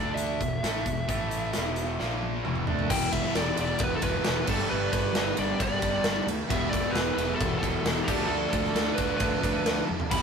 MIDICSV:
0, 0, Header, 1, 8, 480
1, 0, Start_track
1, 0, Tempo, 451467
1, 1148, Time_signature, 4, 2, 24, 8
1, 10869, End_track
2, 0, Start_track
2, 0, Title_t, "Analog synth pad"
2, 0, Program_c, 0, 89
2, 3067, Note_on_c, 0, 83, 92
2, 3071, Note_on_c, 0, 67, 76
2, 3072, Note_on_c, 0, 76, 67
2, 4736, Note_off_c, 0, 76, 0
2, 4745, Note_on_c, 0, 74, 78
2, 6885, Note_off_c, 0, 74, 0
2, 6915, Note_on_c, 0, 76, 73
2, 8542, Note_off_c, 0, 83, 0
2, 8544, Note_off_c, 0, 67, 0
2, 8574, Note_off_c, 0, 76, 0
2, 8591, Note_on_c, 0, 86, 91
2, 8602, Note_on_c, 0, 69, 81
2, 8606, Note_on_c, 0, 77, 75
2, 10723, Note_off_c, 0, 86, 0
2, 10729, Note_off_c, 0, 69, 0
2, 10731, Note_off_c, 0, 77, 0
2, 10745, Note_on_c, 0, 79, 71
2, 10746, Note_on_c, 0, 88, 87
2, 10758, Note_on_c, 0, 71, 77
2, 10869, Note_off_c, 0, 71, 0
2, 10869, Note_off_c, 0, 79, 0
2, 10869, Note_off_c, 0, 88, 0
2, 10869, End_track
3, 0, Start_track
3, 0, Title_t, "Lead electric guitar"
3, 0, Program_c, 1, 29
3, 0, Note_on_c, 1, 74, 90
3, 157, Note_off_c, 1, 74, 0
3, 161, Note_on_c, 1, 76, 77
3, 2538, Note_off_c, 1, 76, 0
3, 3088, Note_on_c, 1, 79, 109
3, 3304, Note_off_c, 1, 79, 0
3, 3321, Note_on_c, 1, 76, 95
3, 3564, Note_off_c, 1, 76, 0
3, 3574, Note_on_c, 1, 74, 94
3, 3788, Note_off_c, 1, 74, 0
3, 3835, Note_on_c, 1, 74, 96
3, 4061, Note_off_c, 1, 74, 0
3, 4077, Note_on_c, 1, 71, 87
3, 4209, Note_off_c, 1, 71, 0
3, 4214, Note_on_c, 1, 69, 69
3, 4281, Note_off_c, 1, 69, 0
3, 4291, Note_on_c, 1, 71, 93
3, 4773, Note_off_c, 1, 71, 0
3, 4777, Note_on_c, 1, 69, 84
3, 4999, Note_off_c, 1, 69, 0
3, 5004, Note_on_c, 1, 71, 92
3, 5222, Note_off_c, 1, 71, 0
3, 5235, Note_on_c, 1, 71, 92
3, 5680, Note_off_c, 1, 71, 0
3, 5729, Note_on_c, 1, 74, 93
3, 5967, Note_off_c, 1, 74, 0
3, 5987, Note_on_c, 1, 74, 84
3, 6646, Note_off_c, 1, 74, 0
3, 6914, Note_on_c, 1, 76, 116
3, 7122, Note_off_c, 1, 76, 0
3, 7126, Note_on_c, 1, 74, 103
3, 7346, Note_on_c, 1, 71, 99
3, 7385, Note_off_c, 1, 74, 0
3, 7578, Note_off_c, 1, 71, 0
3, 7591, Note_on_c, 1, 71, 106
3, 7812, Note_off_c, 1, 71, 0
3, 7816, Note_on_c, 1, 69, 97
3, 8054, Note_off_c, 1, 69, 0
3, 8067, Note_on_c, 1, 69, 98
3, 8541, Note_on_c, 1, 67, 81
3, 8582, Note_off_c, 1, 69, 0
3, 8776, Note_on_c, 1, 69, 93
3, 8812, Note_off_c, 1, 67, 0
3, 9026, Note_off_c, 1, 69, 0
3, 9038, Note_on_c, 1, 69, 90
3, 9505, Note_off_c, 1, 69, 0
3, 9510, Note_on_c, 1, 71, 91
3, 9740, Note_off_c, 1, 71, 0
3, 9753, Note_on_c, 1, 71, 78
3, 10445, Note_off_c, 1, 71, 0
3, 10753, Note_on_c, 1, 83, 114
3, 10869, Note_off_c, 1, 83, 0
3, 10869, End_track
4, 0, Start_track
4, 0, Title_t, "Overdriven electric guitar"
4, 0, Program_c, 2, 29
4, 3068, Note_on_c, 2, 52, 94
4, 3080, Note_on_c, 2, 59, 104
4, 3095, Note_on_c, 2, 64, 98
4, 3103, Note_on_c, 2, 67, 103
4, 3774, Note_off_c, 2, 67, 0
4, 3777, Note_off_c, 2, 52, 0
4, 3778, Note_on_c, 2, 67, 82
4, 3783, Note_off_c, 2, 64, 0
4, 3796, Note_on_c, 2, 64, 84
4, 3807, Note_off_c, 2, 59, 0
4, 3811, Note_on_c, 2, 59, 75
4, 3819, Note_on_c, 2, 52, 76
4, 4726, Note_off_c, 2, 52, 0
4, 4730, Note_on_c, 2, 55, 86
4, 4740, Note_off_c, 2, 59, 0
4, 4740, Note_off_c, 2, 64, 0
4, 4745, Note_on_c, 2, 59, 91
4, 4758, Note_on_c, 2, 62, 92
4, 4773, Note_off_c, 2, 67, 0
4, 4777, Note_on_c, 2, 67, 99
4, 5453, Note_off_c, 2, 55, 0
4, 5457, Note_on_c, 2, 55, 71
4, 5460, Note_off_c, 2, 62, 0
4, 5472, Note_off_c, 2, 59, 0
4, 5476, Note_on_c, 2, 59, 84
4, 5485, Note_on_c, 2, 62, 79
4, 5489, Note_off_c, 2, 67, 0
4, 5493, Note_on_c, 2, 67, 80
4, 6649, Note_off_c, 2, 55, 0
4, 6658, Note_off_c, 2, 59, 0
4, 6663, Note_off_c, 2, 62, 0
4, 6667, Note_off_c, 2, 67, 0
4, 6888, Note_on_c, 2, 52, 95
4, 6904, Note_on_c, 2, 59, 114
4, 6916, Note_on_c, 2, 64, 113
4, 6922, Note_on_c, 2, 67, 103
4, 7604, Note_off_c, 2, 52, 0
4, 7605, Note_off_c, 2, 67, 0
4, 7612, Note_off_c, 2, 59, 0
4, 7618, Note_off_c, 2, 64, 0
4, 7618, Note_on_c, 2, 67, 100
4, 7641, Note_on_c, 2, 64, 87
4, 7654, Note_on_c, 2, 59, 81
4, 7666, Note_on_c, 2, 52, 77
4, 8568, Note_off_c, 2, 67, 0
4, 8571, Note_on_c, 2, 50, 91
4, 8579, Note_off_c, 2, 64, 0
4, 8580, Note_off_c, 2, 52, 0
4, 8584, Note_on_c, 2, 53, 97
4, 8586, Note_off_c, 2, 59, 0
4, 8594, Note_on_c, 2, 57, 101
4, 8604, Note_on_c, 2, 62, 97
4, 8612, Note_on_c, 2, 69, 99
4, 9284, Note_off_c, 2, 50, 0
4, 9290, Note_off_c, 2, 53, 0
4, 9295, Note_off_c, 2, 57, 0
4, 9296, Note_on_c, 2, 50, 81
4, 9301, Note_off_c, 2, 62, 0
4, 9304, Note_off_c, 2, 69, 0
4, 9309, Note_on_c, 2, 53, 72
4, 9320, Note_on_c, 2, 57, 75
4, 9328, Note_on_c, 2, 62, 86
4, 9341, Note_on_c, 2, 69, 76
4, 10484, Note_off_c, 2, 50, 0
4, 10490, Note_off_c, 2, 53, 0
4, 10496, Note_off_c, 2, 57, 0
4, 10500, Note_off_c, 2, 62, 0
4, 10507, Note_off_c, 2, 69, 0
4, 10737, Note_on_c, 2, 52, 93
4, 10750, Note_on_c, 2, 59, 96
4, 10761, Note_on_c, 2, 64, 105
4, 10778, Note_on_c, 2, 67, 107
4, 10869, Note_off_c, 2, 52, 0
4, 10869, Note_off_c, 2, 59, 0
4, 10869, Note_off_c, 2, 64, 0
4, 10869, Note_off_c, 2, 67, 0
4, 10869, End_track
5, 0, Start_track
5, 0, Title_t, "Overdriven electric guitar"
5, 0, Program_c, 3, 29
5, 0, Note_on_c, 3, 50, 83
5, 0, Note_on_c, 3, 57, 82
5, 0, Note_on_c, 3, 62, 95
5, 420, Note_off_c, 3, 50, 0
5, 420, Note_off_c, 3, 57, 0
5, 428, Note_off_c, 3, 62, 0
5, 435, Note_on_c, 3, 40, 61
5, 438, Note_on_c, 3, 47, 69
5, 624, Note_off_c, 3, 40, 0
5, 625, Note_off_c, 3, 47, 0
5, 670, Note_on_c, 3, 45, 94
5, 676, Note_on_c, 3, 52, 92
5, 679, Note_on_c, 3, 57, 105
5, 902, Note_off_c, 3, 45, 0
5, 905, Note_off_c, 3, 52, 0
5, 907, Note_off_c, 3, 57, 0
5, 912, Note_on_c, 3, 40, 56
5, 917, Note_on_c, 3, 47, 62
5, 1102, Note_off_c, 3, 40, 0
5, 1105, Note_off_c, 3, 47, 0
5, 1152, Note_on_c, 3, 45, 86
5, 1155, Note_on_c, 3, 52, 100
5, 1158, Note_on_c, 3, 57, 105
5, 1616, Note_off_c, 3, 52, 0
5, 1620, Note_on_c, 3, 40, 88
5, 1625, Note_off_c, 3, 45, 0
5, 1628, Note_off_c, 3, 57, 0
5, 1629, Note_on_c, 3, 52, 95
5, 1635, Note_on_c, 3, 47, 89
5, 2099, Note_off_c, 3, 40, 0
5, 2103, Note_off_c, 3, 52, 0
5, 2107, Note_off_c, 3, 47, 0
5, 2113, Note_on_c, 3, 46, 85
5, 2120, Note_on_c, 3, 53, 98
5, 2124, Note_on_c, 3, 58, 98
5, 2586, Note_off_c, 3, 46, 0
5, 2589, Note_off_c, 3, 53, 0
5, 2591, Note_off_c, 3, 58, 0
5, 2591, Note_on_c, 3, 40, 82
5, 2593, Note_on_c, 3, 47, 93
5, 2602, Note_on_c, 3, 52, 96
5, 2825, Note_off_c, 3, 40, 0
5, 2826, Note_off_c, 3, 47, 0
5, 2830, Note_off_c, 3, 52, 0
5, 2834, Note_on_c, 3, 50, 77
5, 2845, Note_on_c, 3, 57, 83
5, 2849, Note_on_c, 3, 62, 88
5, 3066, Note_off_c, 3, 50, 0
5, 3072, Note_off_c, 3, 57, 0
5, 3074, Note_off_c, 3, 62, 0
5, 3086, Note_on_c, 3, 40, 99
5, 3104, Note_on_c, 3, 47, 95
5, 3117, Note_on_c, 3, 52, 109
5, 4265, Note_off_c, 3, 40, 0
5, 4266, Note_off_c, 3, 52, 0
5, 4275, Note_off_c, 3, 47, 0
5, 4279, Note_on_c, 3, 52, 93
5, 4301, Note_on_c, 3, 47, 78
5, 4321, Note_on_c, 3, 40, 79
5, 4497, Note_off_c, 3, 40, 0
5, 4502, Note_off_c, 3, 52, 0
5, 4510, Note_on_c, 3, 40, 77
5, 4512, Note_off_c, 3, 47, 0
5, 4528, Note_on_c, 3, 47, 85
5, 4547, Note_on_c, 3, 52, 86
5, 4737, Note_off_c, 3, 40, 0
5, 4746, Note_off_c, 3, 47, 0
5, 4755, Note_off_c, 3, 52, 0
5, 4759, Note_on_c, 3, 43, 86
5, 4777, Note_on_c, 3, 50, 89
5, 4790, Note_on_c, 3, 55, 95
5, 5925, Note_off_c, 3, 43, 0
5, 5938, Note_on_c, 3, 43, 79
5, 5949, Note_off_c, 3, 50, 0
5, 5956, Note_off_c, 3, 55, 0
5, 5963, Note_on_c, 3, 50, 86
5, 5974, Note_on_c, 3, 55, 91
5, 6157, Note_off_c, 3, 55, 0
5, 6170, Note_off_c, 3, 43, 0
5, 6170, Note_on_c, 3, 55, 100
5, 6173, Note_off_c, 3, 50, 0
5, 6185, Note_on_c, 3, 50, 77
5, 6204, Note_on_c, 3, 43, 73
5, 6646, Note_off_c, 3, 55, 0
5, 6653, Note_off_c, 3, 50, 0
5, 6663, Note_off_c, 3, 43, 0
5, 6888, Note_on_c, 3, 40, 92
5, 6906, Note_on_c, 3, 47, 102
5, 6924, Note_on_c, 3, 52, 111
5, 8079, Note_off_c, 3, 52, 0
5, 8083, Note_off_c, 3, 40, 0
5, 8092, Note_off_c, 3, 47, 0
5, 8092, Note_on_c, 3, 52, 89
5, 8114, Note_on_c, 3, 47, 84
5, 8129, Note_on_c, 3, 40, 70
5, 8320, Note_off_c, 3, 40, 0
5, 8326, Note_off_c, 3, 52, 0
5, 8333, Note_on_c, 3, 40, 87
5, 8337, Note_off_c, 3, 47, 0
5, 8356, Note_on_c, 3, 47, 90
5, 8365, Note_on_c, 3, 52, 101
5, 8566, Note_off_c, 3, 40, 0
5, 8577, Note_off_c, 3, 47, 0
5, 8582, Note_off_c, 3, 52, 0
5, 8583, Note_on_c, 3, 50, 84
5, 8603, Note_on_c, 3, 57, 88
5, 8619, Note_on_c, 3, 62, 98
5, 9769, Note_off_c, 3, 50, 0
5, 9779, Note_off_c, 3, 57, 0
5, 9783, Note_on_c, 3, 50, 75
5, 9787, Note_off_c, 3, 62, 0
5, 9807, Note_on_c, 3, 57, 83
5, 9820, Note_on_c, 3, 62, 84
5, 10008, Note_off_c, 3, 62, 0
5, 10009, Note_off_c, 3, 50, 0
5, 10021, Note_on_c, 3, 62, 87
5, 10022, Note_off_c, 3, 57, 0
5, 10047, Note_on_c, 3, 57, 89
5, 10057, Note_on_c, 3, 50, 74
5, 10487, Note_off_c, 3, 62, 0
5, 10501, Note_off_c, 3, 57, 0
5, 10506, Note_off_c, 3, 50, 0
5, 10735, Note_on_c, 3, 40, 90
5, 10760, Note_on_c, 3, 47, 102
5, 10772, Note_on_c, 3, 52, 104
5, 10869, Note_off_c, 3, 40, 0
5, 10869, Note_off_c, 3, 47, 0
5, 10869, Note_off_c, 3, 52, 0
5, 10869, End_track
6, 0, Start_track
6, 0, Title_t, "Overdriven electric guitar"
6, 0, Program_c, 4, 29
6, 4040, Note_on_c, 4, 40, 81
6, 4054, Note_on_c, 4, 47, 84
6, 4064, Note_on_c, 4, 52, 84
6, 4742, Note_off_c, 4, 40, 0
6, 4749, Note_off_c, 4, 47, 0
6, 4754, Note_off_c, 4, 52, 0
6, 5714, Note_on_c, 4, 55, 89
6, 5722, Note_on_c, 4, 50, 83
6, 5736, Note_on_c, 4, 43, 66
6, 6657, Note_off_c, 4, 55, 0
6, 6662, Note_off_c, 4, 50, 0
6, 6668, Note_off_c, 4, 43, 0
6, 7872, Note_on_c, 4, 40, 72
6, 7880, Note_on_c, 4, 47, 81
6, 7885, Note_on_c, 4, 52, 92
6, 8575, Note_off_c, 4, 40, 0
6, 8577, Note_off_c, 4, 47, 0
6, 8581, Note_off_c, 4, 52, 0
6, 9537, Note_on_c, 4, 62, 88
6, 9554, Note_on_c, 4, 57, 83
6, 9560, Note_on_c, 4, 50, 77
6, 10485, Note_off_c, 4, 62, 0
6, 10493, Note_off_c, 4, 57, 0
6, 10496, Note_off_c, 4, 50, 0
6, 10869, End_track
7, 0, Start_track
7, 0, Title_t, "Fingered electric bass"
7, 0, Program_c, 5, 33
7, 0, Note_on_c, 5, 38, 99
7, 398, Note_off_c, 5, 38, 0
7, 439, Note_on_c, 5, 28, 72
7, 657, Note_off_c, 5, 28, 0
7, 675, Note_on_c, 5, 33, 92
7, 895, Note_off_c, 5, 33, 0
7, 915, Note_on_c, 5, 28, 73
7, 1136, Note_off_c, 5, 28, 0
7, 1163, Note_on_c, 5, 33, 85
7, 1604, Note_off_c, 5, 33, 0
7, 1657, Note_on_c, 5, 28, 82
7, 2092, Note_off_c, 5, 28, 0
7, 2133, Note_on_c, 5, 34, 83
7, 2570, Note_off_c, 5, 34, 0
7, 2619, Note_on_c, 5, 28, 89
7, 2830, Note_off_c, 5, 28, 0
7, 2860, Note_on_c, 5, 38, 85
7, 3071, Note_off_c, 5, 38, 0
7, 3094, Note_on_c, 5, 28, 96
7, 3411, Note_off_c, 5, 28, 0
7, 3570, Note_on_c, 5, 28, 85
7, 3727, Note_off_c, 5, 28, 0
7, 3814, Note_on_c, 5, 28, 94
7, 3969, Note_off_c, 5, 28, 0
7, 4045, Note_on_c, 5, 28, 92
7, 4203, Note_off_c, 5, 28, 0
7, 4286, Note_on_c, 5, 28, 80
7, 4444, Note_off_c, 5, 28, 0
7, 4537, Note_on_c, 5, 28, 87
7, 4691, Note_off_c, 5, 28, 0
7, 4767, Note_on_c, 5, 31, 91
7, 4924, Note_off_c, 5, 31, 0
7, 5021, Note_on_c, 5, 31, 97
7, 5173, Note_off_c, 5, 31, 0
7, 5246, Note_on_c, 5, 31, 92
7, 5403, Note_off_c, 5, 31, 0
7, 5488, Note_on_c, 5, 31, 87
7, 5645, Note_off_c, 5, 31, 0
7, 5720, Note_on_c, 5, 31, 93
7, 5879, Note_off_c, 5, 31, 0
7, 5959, Note_on_c, 5, 31, 95
7, 6118, Note_off_c, 5, 31, 0
7, 6203, Note_on_c, 5, 31, 85
7, 6361, Note_off_c, 5, 31, 0
7, 6419, Note_on_c, 5, 31, 95
7, 6585, Note_off_c, 5, 31, 0
7, 6662, Note_on_c, 5, 38, 94
7, 6827, Note_off_c, 5, 38, 0
7, 6914, Note_on_c, 5, 28, 99
7, 7236, Note_off_c, 5, 28, 0
7, 7379, Note_on_c, 5, 28, 96
7, 7545, Note_off_c, 5, 28, 0
7, 7627, Note_on_c, 5, 28, 99
7, 7790, Note_off_c, 5, 28, 0
7, 7881, Note_on_c, 5, 28, 98
7, 8039, Note_off_c, 5, 28, 0
7, 8108, Note_on_c, 5, 28, 90
7, 8270, Note_off_c, 5, 28, 0
7, 8345, Note_on_c, 5, 28, 95
7, 8508, Note_off_c, 5, 28, 0
7, 8601, Note_on_c, 5, 38, 90
7, 8759, Note_off_c, 5, 38, 0
7, 8814, Note_on_c, 5, 38, 95
7, 8981, Note_off_c, 5, 38, 0
7, 9072, Note_on_c, 5, 38, 95
7, 9232, Note_off_c, 5, 38, 0
7, 9295, Note_on_c, 5, 38, 89
7, 9460, Note_off_c, 5, 38, 0
7, 9554, Note_on_c, 5, 38, 95
7, 9713, Note_off_c, 5, 38, 0
7, 9791, Note_on_c, 5, 38, 93
7, 9951, Note_off_c, 5, 38, 0
7, 10032, Note_on_c, 5, 38, 90
7, 10191, Note_off_c, 5, 38, 0
7, 10270, Note_on_c, 5, 38, 87
7, 10430, Note_off_c, 5, 38, 0
7, 10526, Note_on_c, 5, 41, 84
7, 10680, Note_off_c, 5, 41, 0
7, 10759, Note_on_c, 5, 28, 90
7, 10869, Note_off_c, 5, 28, 0
7, 10869, End_track
8, 0, Start_track
8, 0, Title_t, "Drums"
8, 185, Note_on_c, 9, 42, 84
8, 291, Note_off_c, 9, 42, 0
8, 433, Note_on_c, 9, 36, 85
8, 438, Note_on_c, 9, 42, 59
8, 539, Note_off_c, 9, 36, 0
8, 544, Note_off_c, 9, 42, 0
8, 679, Note_on_c, 9, 42, 80
8, 681, Note_on_c, 9, 38, 99
8, 786, Note_off_c, 9, 42, 0
8, 788, Note_off_c, 9, 38, 0
8, 912, Note_on_c, 9, 42, 61
8, 914, Note_on_c, 9, 36, 79
8, 1018, Note_off_c, 9, 42, 0
8, 1020, Note_off_c, 9, 36, 0
8, 1156, Note_on_c, 9, 36, 104
8, 1157, Note_on_c, 9, 42, 88
8, 1262, Note_off_c, 9, 36, 0
8, 1263, Note_off_c, 9, 42, 0
8, 1394, Note_on_c, 9, 42, 64
8, 1500, Note_off_c, 9, 42, 0
8, 1631, Note_on_c, 9, 42, 83
8, 1633, Note_on_c, 9, 38, 96
8, 1737, Note_off_c, 9, 42, 0
8, 1739, Note_off_c, 9, 38, 0
8, 1872, Note_on_c, 9, 42, 71
8, 1979, Note_off_c, 9, 42, 0
8, 2124, Note_on_c, 9, 38, 56
8, 2230, Note_off_c, 9, 38, 0
8, 2368, Note_on_c, 9, 48, 67
8, 2475, Note_off_c, 9, 48, 0
8, 2603, Note_on_c, 9, 47, 69
8, 2709, Note_off_c, 9, 47, 0
8, 2716, Note_on_c, 9, 45, 74
8, 2822, Note_off_c, 9, 45, 0
8, 2840, Note_on_c, 9, 43, 92
8, 2946, Note_off_c, 9, 43, 0
8, 2965, Note_on_c, 9, 43, 77
8, 3072, Note_off_c, 9, 43, 0
8, 3083, Note_on_c, 9, 49, 126
8, 3085, Note_on_c, 9, 36, 115
8, 3190, Note_off_c, 9, 49, 0
8, 3192, Note_off_c, 9, 36, 0
8, 3323, Note_on_c, 9, 51, 73
8, 3324, Note_on_c, 9, 36, 85
8, 3429, Note_off_c, 9, 51, 0
8, 3431, Note_off_c, 9, 36, 0
8, 3448, Note_on_c, 9, 38, 33
8, 3554, Note_off_c, 9, 38, 0
8, 3564, Note_on_c, 9, 51, 94
8, 3567, Note_on_c, 9, 38, 106
8, 3671, Note_off_c, 9, 51, 0
8, 3673, Note_off_c, 9, 38, 0
8, 3799, Note_on_c, 9, 51, 73
8, 3905, Note_off_c, 9, 51, 0
8, 4026, Note_on_c, 9, 51, 101
8, 4040, Note_on_c, 9, 36, 117
8, 4132, Note_off_c, 9, 51, 0
8, 4146, Note_off_c, 9, 36, 0
8, 4273, Note_on_c, 9, 51, 76
8, 4280, Note_on_c, 9, 36, 87
8, 4379, Note_off_c, 9, 51, 0
8, 4386, Note_off_c, 9, 36, 0
8, 4512, Note_on_c, 9, 51, 98
8, 4514, Note_on_c, 9, 38, 112
8, 4618, Note_off_c, 9, 51, 0
8, 4620, Note_off_c, 9, 38, 0
8, 4755, Note_on_c, 9, 57, 101
8, 4762, Note_on_c, 9, 36, 106
8, 4861, Note_off_c, 9, 57, 0
8, 4868, Note_off_c, 9, 36, 0
8, 5240, Note_on_c, 9, 36, 87
8, 5240, Note_on_c, 9, 51, 81
8, 5347, Note_off_c, 9, 36, 0
8, 5347, Note_off_c, 9, 51, 0
8, 5475, Note_on_c, 9, 51, 101
8, 5477, Note_on_c, 9, 38, 110
8, 5581, Note_off_c, 9, 51, 0
8, 5584, Note_off_c, 9, 38, 0
8, 5708, Note_on_c, 9, 51, 81
8, 5814, Note_off_c, 9, 51, 0
8, 5955, Note_on_c, 9, 36, 112
8, 5955, Note_on_c, 9, 51, 112
8, 6061, Note_off_c, 9, 36, 0
8, 6061, Note_off_c, 9, 51, 0
8, 6188, Note_on_c, 9, 51, 77
8, 6192, Note_on_c, 9, 36, 82
8, 6294, Note_off_c, 9, 51, 0
8, 6298, Note_off_c, 9, 36, 0
8, 6422, Note_on_c, 9, 51, 102
8, 6424, Note_on_c, 9, 38, 111
8, 6528, Note_off_c, 9, 51, 0
8, 6530, Note_off_c, 9, 38, 0
8, 6680, Note_on_c, 9, 51, 77
8, 6787, Note_off_c, 9, 51, 0
8, 6916, Note_on_c, 9, 36, 122
8, 6920, Note_on_c, 9, 51, 101
8, 7022, Note_off_c, 9, 36, 0
8, 7026, Note_off_c, 9, 51, 0
8, 7156, Note_on_c, 9, 36, 85
8, 7163, Note_on_c, 9, 51, 74
8, 7262, Note_off_c, 9, 36, 0
8, 7270, Note_off_c, 9, 51, 0
8, 7392, Note_on_c, 9, 51, 89
8, 7395, Note_on_c, 9, 38, 116
8, 7499, Note_off_c, 9, 51, 0
8, 7501, Note_off_c, 9, 38, 0
8, 7637, Note_on_c, 9, 51, 76
8, 7744, Note_off_c, 9, 51, 0
8, 7874, Note_on_c, 9, 36, 115
8, 7876, Note_on_c, 9, 51, 94
8, 7980, Note_off_c, 9, 36, 0
8, 7982, Note_off_c, 9, 51, 0
8, 8111, Note_on_c, 9, 36, 85
8, 8118, Note_on_c, 9, 51, 68
8, 8218, Note_off_c, 9, 36, 0
8, 8225, Note_off_c, 9, 51, 0
8, 8353, Note_on_c, 9, 51, 104
8, 8355, Note_on_c, 9, 38, 112
8, 8459, Note_off_c, 9, 51, 0
8, 8461, Note_off_c, 9, 38, 0
8, 8590, Note_on_c, 9, 36, 107
8, 8593, Note_on_c, 9, 57, 105
8, 8696, Note_off_c, 9, 36, 0
8, 8699, Note_off_c, 9, 57, 0
8, 9067, Note_on_c, 9, 51, 76
8, 9068, Note_on_c, 9, 36, 90
8, 9174, Note_off_c, 9, 51, 0
8, 9175, Note_off_c, 9, 36, 0
8, 9192, Note_on_c, 9, 38, 31
8, 9299, Note_off_c, 9, 38, 0
8, 9310, Note_on_c, 9, 51, 99
8, 9312, Note_on_c, 9, 38, 106
8, 9417, Note_off_c, 9, 51, 0
8, 9419, Note_off_c, 9, 38, 0
8, 9545, Note_on_c, 9, 51, 83
8, 9550, Note_on_c, 9, 36, 87
8, 9651, Note_off_c, 9, 51, 0
8, 9656, Note_off_c, 9, 36, 0
8, 9779, Note_on_c, 9, 51, 112
8, 9786, Note_on_c, 9, 36, 114
8, 9886, Note_off_c, 9, 51, 0
8, 9892, Note_off_c, 9, 36, 0
8, 10031, Note_on_c, 9, 36, 89
8, 10038, Note_on_c, 9, 51, 78
8, 10137, Note_off_c, 9, 36, 0
8, 10144, Note_off_c, 9, 51, 0
8, 10269, Note_on_c, 9, 51, 101
8, 10272, Note_on_c, 9, 38, 108
8, 10376, Note_off_c, 9, 51, 0
8, 10378, Note_off_c, 9, 38, 0
8, 10515, Note_on_c, 9, 48, 66
8, 10621, Note_off_c, 9, 48, 0
8, 10629, Note_on_c, 9, 43, 93
8, 10736, Note_off_c, 9, 43, 0
8, 10753, Note_on_c, 9, 36, 116
8, 10753, Note_on_c, 9, 49, 107
8, 10753, Note_on_c, 9, 51, 108
8, 10859, Note_off_c, 9, 36, 0
8, 10859, Note_off_c, 9, 49, 0
8, 10859, Note_off_c, 9, 51, 0
8, 10869, End_track
0, 0, End_of_file